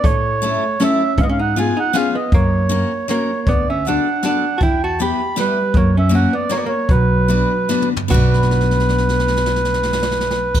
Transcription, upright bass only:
X:1
M:3/4
L:1/8
Q:"Swing" 1/4=157
K:Bm
V:1 name="Upright bass" clef=bass
A,,4 z2 | ^G,,4 z2 | F,,4 z2 | D,,4 z2 |
E,,4 z2 | F,,4 z2 | B,,,4 z2 | B,,,6- |
B,,,6 |]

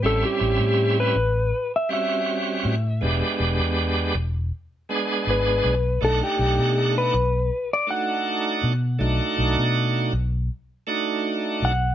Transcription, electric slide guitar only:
X:1
M:4/4
L:1/16
Q:1/4=80
K:Bdor
V:1 name="Electric slide guitar"
A =G4 B4 e e6- | e2 z8 z2 B4 | A =G4 B4 d f6- | f2 z12 f2 |]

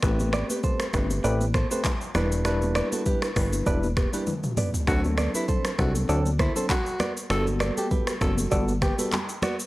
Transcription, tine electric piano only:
X:1
M:4/4
L:1/16
Q:"Swing 16ths" 1/4=99
K:G
V:1 name="Tine electric piano"
[A,CGB]6 [A,CGB]2 [A,CGB] z2 [A,CGB] z2 [G,DEB]2 | [G,DEB]6 [G,DEB]2 [G,DEB] z2 [G,DEB] z4 | [F,CDA]6 [F,CDA]2 [F,CDA] z2 [F,CDA] z4 | [G,B,FA]6 [G,B,FA]2 [G,B,FA] z2 [G,B,FA] z4 |]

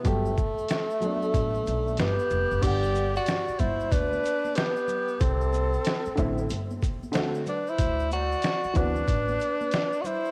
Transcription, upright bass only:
X:1
M:4/4
L:1/16
Q:"Swing 16ths" 1/4=93
K:G
V:1 name="Upright bass" clef=bass
G,,,2 z6 A,,,2 B,,,2 G,,, z =F,,, ^F,,, | G,,,4 z2 G,,,2 D,,2 z6 | C,,4 z2 A,,,2 G,,,2 z6 | D,,4 z2 D,,2 A,,,2 z6 |]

